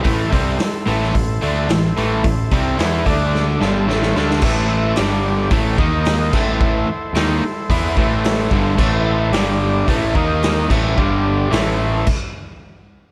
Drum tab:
CC |----------------|----------------|x-------------x-|----------------|
HH |o-o-o-o-o-o-o-o-|o-o-o-o---------|----o---o---o---|----o---o---o---|
SD |----o--o----o---|----o---o-o-oooo|----o-------o---|----o-------o---|
BD |o-o-----o-------|o-o---o---------|o-------o-o---o-|o-------o-o---o-|

CC |x-------------x-|--------x-------|
HH |----o---o---o---|----o-----------|
SD |----o-------o---|----o-----------|
BD |o-------o-o---o-|o-------o-------|